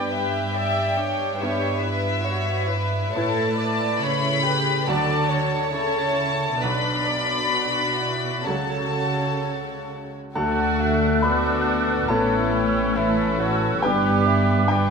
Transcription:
0.00 1.36 G2 soft
0.00 1.36 B3 soft
0.00 1.37 G4 soft
0.00 1.38 G4 soft
0.00 0.12 B4 soft
0.00 1.37 B4 soft
0.00 0.11 D5 soft
0.00 0.54 G5 medium
0.13 0.55 B4 soft
0.13 0.56 E5 soft
0.56 0.98 D5 soft
0.56 0.98 E5 medium
0.56 1.39 G5 medium
0.97 1.40 D4 soft
0.97 1.40 C#5 soft
1.38 3.11 G2 soft
1.38 3.12 G3 soft
1.38 3.12 B3 soft
1.38 1.80 G4 soft
1.38 2.22 B4 soft
1.38 1.82 C#5 medium
1.38 3.14 E5 medium
1.44 3.12 B4 soft
1.82 2.23 E4 soft
1.82 2.24 B4 soft
2.23 2.68 F#4 medium
2.23 3.12 B4 soft
2.23 2.69 C#5 soft
2.68 3.97 E4 medium
2.68 3.14 B4 medium
3.13 3.99 A2 medium
3.13 3.99 A2 soft
3.13 4.84 A3 soft
3.13 4.85 E4 soft
3.13 3.57 A4 medium
3.13 3.57 C#5 medium
3.13 3.99 A5 medium
3.17 4.85 B4 soft
3.57 4.84 B4 soft
3.57 4.00 D5 soft
3.98 4.88 C#3 soft
3.98 4.42 E4 medium
3.98 4.44 C#5 soft
3.98 4.88 B5 medium
4.43 4.87 G4 medium
4.43 4.88 B4 medium
4.87 5.71 D2 soft
4.87 5.73 D3 medium
4.87 6.57 F#3 soft
4.87 6.57 F#4 soft
4.87 5.73 F#4 soft
4.87 5.71 A4 soft
4.87 5.30 D5 medium
4.87 6.58 D5 soft
4.87 5.73 A5 medium
5.30 6.61 C#5 medium
5.72 6.61 C#3 soft
5.72 6.59 E4 soft
5.72 6.59 A4 soft
5.72 6.61 A5 medium
6.60 8.43 B1 soft
6.60 8.42 B2 soft
6.60 8.43 F#3 soft
6.60 7.50 D4 soft
6.60 8.43 F#4 soft
6.60 7.05 B4 medium
6.60 8.41 D5 medium
6.60 8.46 B5 medium
6.64 8.43 D5 soft
7.05 7.51 D5 soft
7.50 7.97 D4 soft
7.50 8.45 F#4 soft
7.97 8.45 E4 soft
8.44 10.33 C#2 soft
8.44 10.15 C#3 soft
8.44 10.33 F#3 soft
8.44 10.15 F#4 soft
8.44 10.34 F#4 soft
8.44 9.89 A4 soft
8.44 10.15 C#5 soft
8.44 10.33 C#5 soft
8.44 9.89 A5 medium
10.35 12.06 D2 soft
10.35 12.06 A3 soft
10.35 11.21 A3 soft
10.35 11.20 F#4 soft
10.35 12.06 F#4 soft
10.35 12.10 A4 medium
10.35 12.06 A4 soft
10.35 11.21 D5 soft
10.35 10.82 F#5 soft
10.35 11.20 A5 medium
10.35 12.06 F#6 soft
10.40 11.22 A3 medium
10.80 11.24 E5 soft
11.22 12.10 B3 medium
11.22 12.10 D4 soft
11.22 12.08 F#4 soft
11.22 11.68 B4 soft
11.22 12.11 D5 medium
11.22 12.05 B5 medium
11.66 12.08 A4 soft
12.08 13.83 A1 medium
12.08 13.79 A2 soft
12.08 13.84 A2 soft
12.08 12.97 A3 medium
12.08 13.79 B3 soft
12.08 13.83 C#4 soft
12.08 12.93 E4 soft
12.08 13.79 E4 soft
12.08 12.52 A4 medium
12.08 13.80 A4 soft
12.08 12.96 B4 medium
12.08 12.99 C#5 medium
12.08 12.92 A5 medium
12.08 12.97 E6 soft
12.53 12.97 G4 medium
12.94 13.83 E3 medium
12.94 13.38 E4 soft
12.94 13.84 A4 medium
12.94 13.82 B4 soft
12.94 13.42 B4 medium
12.94 13.79 E5 medium
12.94 13.82 E6 medium
13.39 13.83 F#4 soft
13.39 13.84 C#5 medium
13.82 14.90 G1 medium
13.82 14.90 G2 medium
13.82 14.90 G2 soft
13.82 14.68 G3 medium
13.82 14.68 B3 soft
13.82 14.90 B3 soft
13.82 14.69 G4 medium
13.82 14.68 B4 medium
13.82 14.28 B4 medium
13.82 14.65 G5 medium
13.82 14.69 D6 soft
13.86 14.90 G4 soft
13.86 14.90 B4 soft
14.26 14.72 E5 medium
14.68 14.90 G3 medium
14.68 14.90 B3 medium
14.68 14.90 D4 medium
14.68 14.90 B4 medium
14.68 14.90 D5 soft
14.68 14.90 G5 medium
14.68 14.90 D6 medium

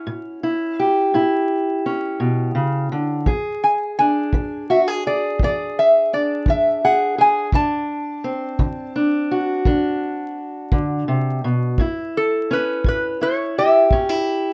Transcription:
0.00 1.84 C#4 medium
0.00 0.43 E4 medium
0.00 0.78 F#5 loud
0.07 0.71 A2 medium
0.43 1.14 E4 medium
0.78 3.23 G4 medium
0.78 1.81 E5 loud
1.14 1.78 A2 medium
1.14 3.23 E4 medium
1.86 3.23 C#4 medium
2.20 2.54 B2 medium
2.55 2.91 C#3 medium
2.92 3.27 D3 medium
3.26 3.91 E3 medium
3.26 4.69 G#4 medium
3.26 kick medium
3.64 3.97 G#5 medium
3.99 6.12 D4 medium
3.99 4.72 G#5 loud
4.33 4.98 E3 medium
4.33 kick medium
4.70 4.88 F#4 medium
4.70 4.80 E5 medium
4.88 5.05 G#4 medium
5.07 5.41 G#4 medium
5.07 5.42 D5 medium
5.39 6.05 E3 medium
5.39 kick medium
5.44 6.83 G#4 medium
5.44 5.79 D5 medium
5.79 6.10 E5 medium
6.13 7.50 D4 medium
6.13 6.49 D5 medium
6.46 7.11 E3 medium
6.46 6.85 E5 medium
6.46 kick medium
6.84 7.17 G#4 medium
6.84 7.20 F#5 medium
7.18 7.49 G#4 medium
7.18 7.52 G#5 loud
7.52 8.17 D3 medium
7.52 8.94 D4 medium
7.52 9.63 A5 loud
7.52 kick medium
8.24 10.37 C4 medium
8.59 9.23 D3 medium
8.59 kick medium
8.96 9.65 D4 medium
9.31 11.79 F#4 medium
9.65 10.30 D3 medium
9.65 11.75 D4 medium
9.65 kick medium
10.72 11.08 D3 medium
10.72 kick medium
11.08 11.43 C3 medium
11.44 11.79 B2 medium
11.78 12.43 A2 medium
11.78 13.20 E4 medium
11.78 kick medium
12.17 12.49 A4 medium
12.51 13.91 C#4 medium
12.51 12.85 B4 medium
12.84 13.50 A2 medium
12.84 kick medium
12.88 13.22 B4 medium
13.21 13.92 E4 medium
13.21 13.55 C#5 medium
13.58 14.53 G4 medium
13.58 14.53 E5 loud
13.91 14.53 A2 medium
13.91 14.09 C#4 medium
13.91 kick medium
14.09 14.53 E4 medium

